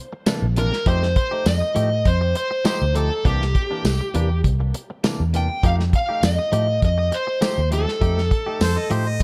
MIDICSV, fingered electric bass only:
0, 0, Header, 1, 2, 480
1, 0, Start_track
1, 0, Tempo, 595829
1, 698, Time_signature, 4, 2, 24, 8
1, 7438, End_track
2, 0, Start_track
2, 0, Title_t, "Fingered electric bass"
2, 0, Program_c, 0, 33
2, 339, Note_on_c, 0, 34, 80
2, 562, Note_off_c, 0, 34, 0
2, 695, Note_on_c, 0, 41, 102
2, 917, Note_off_c, 0, 41, 0
2, 1177, Note_on_c, 0, 41, 98
2, 1295, Note_off_c, 0, 41, 0
2, 1419, Note_on_c, 0, 45, 80
2, 1639, Note_off_c, 0, 45, 0
2, 1655, Note_on_c, 0, 41, 89
2, 1877, Note_off_c, 0, 41, 0
2, 2268, Note_on_c, 0, 38, 80
2, 2487, Note_off_c, 0, 38, 0
2, 2620, Note_on_c, 0, 36, 101
2, 2839, Note_off_c, 0, 36, 0
2, 3097, Note_on_c, 0, 36, 91
2, 3214, Note_off_c, 0, 36, 0
2, 3340, Note_on_c, 0, 40, 79
2, 3559, Note_off_c, 0, 40, 0
2, 3579, Note_on_c, 0, 36, 89
2, 3798, Note_off_c, 0, 36, 0
2, 4189, Note_on_c, 0, 40, 81
2, 4407, Note_off_c, 0, 40, 0
2, 4539, Note_on_c, 0, 41, 101
2, 4758, Note_off_c, 0, 41, 0
2, 5017, Note_on_c, 0, 41, 92
2, 5134, Note_off_c, 0, 41, 0
2, 5257, Note_on_c, 0, 45, 75
2, 5477, Note_off_c, 0, 45, 0
2, 5498, Note_on_c, 0, 41, 84
2, 5718, Note_off_c, 0, 41, 0
2, 6104, Note_on_c, 0, 39, 81
2, 6324, Note_off_c, 0, 39, 0
2, 6457, Note_on_c, 0, 41, 101
2, 6677, Note_off_c, 0, 41, 0
2, 6936, Note_on_c, 0, 41, 100
2, 7053, Note_off_c, 0, 41, 0
2, 7176, Note_on_c, 0, 45, 78
2, 7396, Note_off_c, 0, 45, 0
2, 7414, Note_on_c, 0, 41, 89
2, 7438, Note_off_c, 0, 41, 0
2, 7438, End_track
0, 0, End_of_file